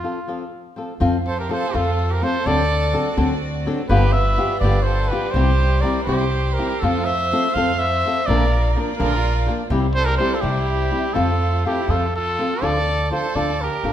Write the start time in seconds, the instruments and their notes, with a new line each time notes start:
Already playing: trumpet F4
0.03 nylon-string guitar F3 C4 F4 A4
0.28 nylon-string guitar F3 C4 F4 A4
0.76 nylon-string guitar F3 C4 F4 A4
1.00 upright bass F2, nylon-string guitar F3 C4 F4 A4, violin section A3 F4 C5
1.26 violin A4, trumpet C5
1.40 violin G4, trumpet A#4
1.49 nylon-string guitar F3 C4 F4 A4, violin A4, trumpet C5
1.74 upright bass F2, nylon-string guitar F3 C4 F4 A4, violin F4, trumpet A4
2.11 violin G4, trumpet A#4
2.21 nylon-string guitar F3 C4 F4 A4, violin A4, trumpet C5
2.44 upright bass D2, nylon-string guitar D3 F#3 C4 D4 A4, violin section C4 F#4 D5, violin A4, trumpet D5
2.93 nylon-string guitar F#3 C4 D4 A4
3.17 upright bass D2, nylon-string guitar D3 F#3 C4 D4 A4
3.66 nylon-string guitar F#3 C4 D4 A4
3.89 upright bass G1, nylon-string guitar G2 D3 F3 B3 F4 G4, violin section G3 F4 B4, violin G4, trumpet B4
4.12 violin B4, trumpet E5
4.37 nylon-string guitar F3 B3 F4 G4
4.60 upright bass G1, nylon-string guitar G2, violin B4, trumpet D5
4.64 nylon-string guitar D3 F3 B3 F4 G4
4.83 violin A4, trumpet C5
5.08 nylon-string guitar F3, violin G4, trumpet B4
5.12 nylon-string guitar B3 F4 G4
5.31 upright bass C2, violin section E4 C5, violin G4, trumpet C5
5.35 nylon-string guitar C3 G3 C4 E4 G4
5.81 nylon-string guitar G3 C4 E4 G4, violin A#4, trumpet D5
6.03 upright bass C2, violin G4, trumpet C5
6.08 nylon-string guitar C3 G3 C4 E4 G4
6.53 violin G4, trumpet A#4
6.58 nylon-string guitar G3 C4 E4 G4
6.80 upright bass F2, nylon-string guitar F3 C4 F4, violin section A3, violin F4, trumpet A4
6.84 violin section F4, nylon-string guitar A4
7.05 violin C5, trumpet E5
7.32 nylon-string guitar F3 C4 F4 A4
7.54 upright bass F2, nylon-string guitar F3 C4 F4 A4, violin C5, trumpet F5
7.79 violin C5, trumpet E5
8.05 nylon-string guitar F3 C4 F4 A4
8.26 upright bass A#1, nylon-string guitar A#2 D3 F3 A#3 D4 A#4, violin section A#3 D5, violin A#4, trumpet D5
8.76 nylon-string guitar F3 A#3 D4 A#4
8.97 upright bass A#1, nylon-string guitar A#2 D3 F3 A#3 D4 A#4, violin F4, trumpet A#4
9.46 nylon-string guitar F3 A#3 D4 A#4
9.69 upright bass C2, nylon-string guitar C3 G3 C4 E4 G4, violin section G3 E4 C5
9.95 violin A4, trumpet C5
10.05 violin G4, trumpet A#4
10.18 nylon-string guitar G3 C4 E4 G4, violin A4, trumpet C5
10.34 violin F4, trumpet A4
10.41 upright bass C2, nylon-string guitar C3 G3 C4 E4 G4, violin E4, trumpet G4
10.91 nylon-string guitar G3 C4 E4 G4
11.14 upright bass F2, nylon-string guitar F3 C4 F4 A4, violin section A3 F4 C5, violin F4, trumpet A4
11.65 nylon-string guitar F3 C4 F4 A4, violin E4, trumpet G4
11.88 upright bass F2, nylon-string guitar F3 C4 F4 A4, violin F4, trumpet A4
12.16 violin F4, trumpet A4
12.39 nylon-string guitar F3 C4 F4 A4
12.62 upright bass D2, nylon-string guitar D3 F3 D4 F4 A4, violin A4, trumpet D5
13.10 nylon-string guitar F3 D4 F4 A4, trumpet C5
13.15 violin A4
13.35 upright bass D2, nylon-string guitar D3 F3 D4 F4 A4, violin A4, trumpet D5
13.61 violin G4, trumpet A#4
13.83 upright bass A1, nylon-string guitar F3 D4 F4 A4